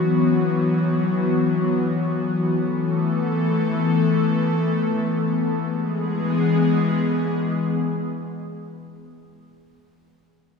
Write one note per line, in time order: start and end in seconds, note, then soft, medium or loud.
0.00 2.58 E3 medium
0.00 2.58 F#3 medium
0.00 5.67 B3 medium
0.00 2.57 F#4 medium
2.60 5.67 E3 medium
2.60 5.67 A3 medium
2.60 5.67 A4 medium
5.70 9.32 E3 medium
5.70 9.32 G#3 medium
5.70 9.33 B3 medium
5.70 9.32 G#4 medium